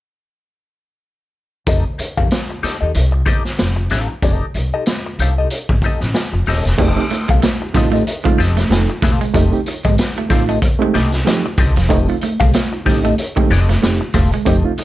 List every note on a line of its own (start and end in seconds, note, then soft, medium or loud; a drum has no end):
1.67 1.81 F1 medium
1.67 1.83 D#4 medium
1.67 1.83 G4 medium
1.67 1.83 A4 medium
1.67 1.84 D#5 medium
1.67 kick loud
1.67 closed hi-hat medium
1.99 muted clean electric guitar stroke soft
1.99 muted upright bass stroke soft
1.99 closed hi-hat medium
2.17 2.28 F2 medium
2.17 2.28 D#4 medium
2.17 2.28 G4 medium
2.17 2.27 A4 soft
2.17 2.27 F5 medium
2.17 kick loud
2.31 muted clean electric guitar stroke soft
2.31 snare loud
2.31 closed hi-hat medium
2.50 muted clean electric guitar stroke soft
2.63 2.75 D#4 medium
2.63 2.76 G4 medium
2.63 2.76 A4 medium
2.63 2.76 D#5 medium
2.63 muted upright bass stroke soft
2.63 snare soft
2.63 closed hi-hat medium
2.81 2.92 D#2 medium
2.81 2.92 D#4 medium
2.81 2.91 G4 medium
2.81 2.91 A4 medium
2.81 2.91 D#5 medium
2.94 3.21 C2 loud
2.94 closed hi-hat medium
3.12 muted clean electric guitar stroke medium
3.26 3.42 D#4 medium
3.26 3.43 G4 medium
3.26 3.43 A4 medium
3.26 3.43 D#5 medium
3.26 kick medium
3.26 closed hi-hat medium
3.44 muted clean electric guitar stroke soft
3.44 snare soft
3.59 3.85 F1 medium
3.59 snare loud
3.59 closed hi-hat medium
3.76 muted clean electric guitar stroke soft
3.90 4.05 A1 medium
3.90 4.12 D#4 medium
3.90 4.09 G4 medium
3.90 4.08 A4 medium
3.90 4.08 F5 medium
3.90 snare soft
3.90 closed hi-hat medium
4.09 muted clean electric guitar stroke soft
4.22 4.37 F1 medium
4.22 4.44 D#4 medium
4.22 4.45 G4 medium
4.22 4.45 A4 medium
4.22 4.45 D#5 medium
4.22 kick medium
4.22 closed hi-hat medium
4.54 4.69 C2 medium
4.54 muted clean electric guitar stroke soft
4.54 closed hi-hat medium
4.74 4.84 D#4 soft
4.74 4.84 G4 medium
4.74 4.83 A4 medium
4.74 4.83 D#5 medium
4.86 muted clean electric guitar stroke soft
4.86 snare loud
4.86 closed hi-hat medium
5.06 muted clean electric guitar stroke soft
5.19 5.44 C2 medium
5.19 5.32 D#4 medium
5.19 5.33 G4 medium
5.19 5.33 A4 medium
5.19 5.33 F5 medium
5.19 closed hi-hat medium
5.38 5.48 D#4 soft
5.38 5.48 G4 soft
5.38 5.47 A4 medium
5.38 5.47 D#5 medium
5.50 closed hi-hat medium
5.69 5.80 G#1 medium
5.69 muted clean electric guitar stroke soft
5.69 kick medium
5.82 5.99 D#4 medium
5.82 6.00 G4 medium
5.82 6.00 A4 medium
5.82 kick medium
5.82 closed hi-hat medium
5.86 6.00 D#5 medium
6.00 6.12 A1 medium
6.00 muted clean electric guitar stroke soft
6.00 snare soft
6.14 muted clean electric guitar stroke soft
6.14 snare loud
6.14 closed hi-hat medium
6.33 6.44 F1 medium
6.33 muted clean electric guitar stroke soft
6.46 6.61 D#1 medium
6.46 6.63 D#4 medium
6.46 6.63 G4 medium
6.46 6.64 A4 medium
6.46 snare soft
6.46 open hi-hat medium
6.50 6.64 D#5 medium
6.64 6.76 E1 medium
6.64 snare soft
6.64 closed hi-hat soft
6.78 6.93 F1 loud
6.78 6.88 A3 loud
6.78 6.88 C4 medium
6.78 7.01 C4 medium
6.78 6.88 D#4 loud
6.78 6.88 G4 loud
6.78 7.01 G4 medium
6.78 7.01 A4 medium
6.78 kick loud
6.78 crash medium
6.82 7.02 D#5 medium
6.96 7.04 A3 medium
6.96 7.04 C4 medium
6.96 7.04 D#4 medium
6.96 7.04 G4 medium
6.96 muted clean electric guitar stroke soft
6.96 closed hi-hat soft
7.10 7.26 A3 medium
7.10 7.19 D#4 soft
7.10 7.20 F4 soft
7.10 muted clean electric guitar stroke soft
7.10 closed hi-hat medium
7.28 7.40 C2 medium
7.28 7.40 G#3 medium
7.28 7.40 C4 medium
7.28 7.40 A4 medium
7.28 7.39 F5 medium
7.28 kick loud
7.28 closed hi-hat medium
7.32 7.40 G4 medium
7.42 7.57 A3 medium
7.42 muted clean electric guitar stroke soft
7.42 snare loud
7.42 closed hi-hat loud
7.60 7.67 D#4 soft
7.60 7.68 G4 soft
7.60 muted clean electric guitar stroke soft
7.74 8.00 A1 medium
7.74 8.00 A3 medium
7.74 8.00 C4 medium
7.74 7.88 C4 medium
7.74 8.01 D#4 medium
7.74 8.01 F4 medium
7.74 7.88 G4 medium
7.74 7.88 A4 medium
7.74 7.88 D#5 medium
7.74 muted clean electric guitar stroke soft
7.74 kick loud
7.74 snare soft
7.74 closed hi-hat medium
7.92 8.04 A3 medium
7.92 8.03 C4 soft
7.92 8.03 G4 medium
7.92 8.03 A4 medium
7.92 8.02 D#5 medium
7.92 closed hi-hat soft
8.07 closed hi-hat medium
8.24 8.36 G#3 medium
8.24 8.39 A3 medium
8.24 8.39 C4 medium
8.24 8.40 D#4 medium
8.24 8.40 F4 loud
8.24 muted clean electric guitar stroke medium
8.24 kick loud
8.24 closed hi-hat soft
8.38 8.64 F1 medium
8.38 8.54 C4 medium
8.38 8.55 G4 medium
8.38 8.55 A4 medium
8.38 8.56 D#5 medium
8.38 muted clean electric guitar stroke soft
8.38 snare soft
8.38 closed hi-hat medium
8.55 8.68 A3 medium
8.55 8.63 D#4 soft
8.55 8.63 G4 soft
8.55 snare soft
8.55 closed hi-hat medium
8.69 8.84 F1 medium
8.69 8.88 A3 medium
8.69 8.89 C4 medium
8.69 8.89 D#4 medium
8.69 8.89 A4 medium
8.69 muted clean electric guitar stroke soft
8.69 snare loud
8.69 closed hi-hat medium
8.89 muted clean electric guitar stroke soft
8.89 closed hi-hat soft
9.01 9.17 E1 medium
9.01 9.17 A3 medium
9.01 9.24 C4 medium
9.01 9.10 D#4 soft
9.01 9.11 G4 soft
9.01 9.21 G4 medium
9.01 9.20 A4 loud
9.01 9.21 F5 medium
9.01 kick loud
9.01 snare soft
9.01 closed hi-hat medium
9.21 9.32 G#3 medium
9.21 muted clean electric guitar stroke medium
9.21 closed hi-hat medium
9.34 9.49 F1 loud
9.34 9.50 F3 medium
9.34 9.43 A3 loud
9.34 9.44 C4 medium
9.34 9.50 C4 medium
9.34 9.44 D#4 loud
9.34 9.44 G4 loud
9.34 9.50 G4 medium
9.34 9.51 A4 medium
9.34 9.51 D#5 medium
9.34 kick loud
9.34 closed hi-hat loud
9.52 9.59 A3 medium
9.52 9.60 C4 medium
9.52 9.60 D#4 medium
9.52 9.60 G4 medium
9.52 closed hi-hat soft
9.65 9.74 D#4 soft
9.65 9.75 F4 soft
9.65 muted clean electric guitar stroke soft
9.65 closed hi-hat medium
9.84 9.96 G#1 medium
9.84 9.96 G#3 medium
9.84 9.95 C4 medium
9.84 9.95 G4 medium
9.84 9.95 A4 medium
9.84 9.94 D#5 medium
9.84 kick medium
9.84 closed hi-hat medium
9.98 muted clean electric guitar stroke soft
9.98 snare loud
9.98 closed hi-hat loud
10.15 10.29 A3 medium
10.15 10.22 D#4 soft
10.15 10.23 G4 soft
10.15 muted clean electric guitar stroke soft
10.15 closed hi-hat soft
10.29 10.55 A1 medium
10.29 10.56 A3 medium
10.29 10.56 C4 medium
10.29 10.43 C4 medium
10.29 10.56 D#4 medium
10.29 10.56 F4 medium
10.29 10.43 G4 medium
10.29 10.44 A4 medium
10.29 10.44 F5 medium
10.29 muted clean electric guitar stroke soft
10.29 kick loud
10.29 snare soft
10.29 closed hi-hat medium
10.48 10.60 A3 medium
10.48 10.59 C4 medium
10.48 10.59 G4 medium
10.48 10.58 A4 medium
10.48 10.58 D#5 medium
10.48 closed hi-hat soft
10.62 muted clean electric guitar stroke soft
10.62 kick loud
10.62 closed hi-hat medium
10.79 10.93 G#3 medium
10.79 10.94 A3 loud
10.79 10.95 C4 loud
10.79 10.95 D#4 medium
10.79 10.95 G4 loud
10.79 muted clean electric guitar stroke soft
10.94 11.20 C2 medium
10.94 11.09 A3 medium
10.94 11.10 C4 medium
10.94 11.10 G4 medium
10.94 11.11 A4 medium
10.94 11.11 D#5 medium
10.94 snare soft
10.94 closed hi-hat medium
11.11 11.18 D#4 soft
11.11 11.19 A4 soft
11.11 muted clean electric guitar stroke soft
11.11 snare soft
11.11 closed hi-hat medium
11.25 11.42 F3 medium
11.25 11.44 A3 medium
11.25 11.44 C4 medium
11.25 11.44 D#4 medium
11.25 11.45 G4 medium
11.25 muted clean electric guitar stroke soft
11.25 snare loud
11.25 closed hi-hat loud
11.46 muted clean electric guitar stroke soft
11.57 11.72 C2 loud
11.57 11.74 C4 medium
11.57 11.66 D#4 soft
11.57 11.67 G4 soft
11.57 11.75 G4 medium
11.57 11.75 A4 medium
11.57 kick loud
11.57 snare soft
11.57 closed hi-hat medium
11.61 11.74 D#5 medium
11.75 11.90 E1 medium
11.75 11.88 F3 medium
11.75 muted clean electric guitar stroke medium
11.75 snare soft
11.75 closed hi-hat medium
11.89 12.05 F1 loud
11.89 11.99 A3 loud
11.89 11.99 C4 loud
11.89 12.06 C4 medium
11.89 11.99 D#4 loud
11.89 11.99 G4 loud
11.89 12.06 G4 medium
11.89 12.06 A4 medium
11.89 12.07 D#5 medium
11.89 kick loud
11.89 closed hi-hat medium
12.07 12.15 A3 medium
12.07 12.15 C4 medium
12.07 12.16 D#4 medium
12.07 12.16 F4 medium
12.07 muted clean electric guitar stroke soft
12.07 closed hi-hat soft
12.21 12.37 A3 medium
12.21 12.30 D#4 soft
12.21 12.31 A4 soft
12.21 muted clean electric guitar stroke soft
12.21 closed hi-hat medium
12.39 12.51 C2 loud
12.39 12.52 G#3 medium
12.39 12.51 C4 soft
12.39 12.50 G4 medium
12.39 12.50 A4 medium
12.39 12.50 F5 medium
12.39 kick loud
12.39 closed hi-hat medium
12.53 12.69 A3 medium
12.53 muted clean electric guitar stroke soft
12.53 snare loud
12.53 closed hi-hat loud
12.72 12.79 D#4 soft
12.72 12.79 F4 soft
12.72 muted clean electric guitar stroke soft
12.85 13.12 A1 medium
12.85 13.12 A3 medium
12.85 13.12 C4 medium
12.85 12.99 C4 medium
12.85 13.12 D#4 medium
12.85 12.99 G4 medium
12.85 13.12 G4 medium
12.85 12.99 A4 medium
12.85 12.99 D#5 medium
12.85 muted clean electric guitar stroke soft
12.85 kick loud
12.85 snare soft
12.85 open hi-hat medium
13.04 13.16 A3 medium
13.04 13.14 C4 medium
13.04 13.15 G4 medium
13.04 13.14 A4 medium
13.04 13.14 D#5 medium
13.04 closed hi-hat soft
13.18 closed hi-hat medium
13.36 13.48 G#3 medium
13.36 13.51 A3 loud
13.36 13.51 C4 medium
13.36 13.51 D#4 loud
13.36 13.52 G4 loud
13.36 muted clean electric guitar stroke soft
13.36 kick loud
13.50 13.76 F1 loud
13.50 13.72 C4 medium
13.50 13.70 G4 medium
13.50 13.69 A4 medium
13.50 13.68 D#5 medium
13.50 muted clean electric guitar stroke soft
13.50 snare soft
13.50 closed hi-hat medium
13.68 13.80 A3 medium
13.68 13.75 D#4 soft
13.68 13.75 G4 soft
13.68 snare soft
13.68 closed hi-hat medium
13.82 13.97 F1 medium
13.82 14.01 A3 medium
13.82 14.01 C4 medium
13.82 14.01 D#4 medium
13.82 14.01 G4 medium
13.82 muted clean electric guitar stroke soft
13.82 snare loud
13.82 closed hi-hat medium
14.01 muted clean electric guitar stroke soft
14.14 14.28 E1 loud
14.14 14.29 A3 medium
14.14 14.30 C4 medium
14.14 14.23 D#4 soft
14.14 14.30 G4 medium
14.14 14.23 G4 soft
14.14 14.31 A4 medium
14.14 14.31 F5 medium
14.14 kick loud
14.14 snare soft
14.14 closed hi-hat medium
14.32 14.45 G#3 medium
14.32 muted clean electric guitar stroke medium
14.32 closed hi-hat soft
14.45 14.61 F1 medium
14.45 14.61 F3 medium
14.45 14.55 A3 loud
14.45 14.56 C4 loud
14.45 14.62 C4 medium
14.45 14.56 D#4 loud
14.45 14.63 G4 medium
14.45 14.56 G4 loud
14.45 14.63 A4 medium
14.45 14.63 D#5 medium
14.45 kick loud
14.45 closed hi-hat medium
14.64 14.71 A3 medium
14.64 14.71 C4 medium
14.64 14.71 D#4 medium
14.64 14.72 F4 loud
14.78 14.84 D#4 soft
14.78 14.84 A4 soft
14.78 muted clean electric guitar stroke soft
14.78 closed hi-hat medium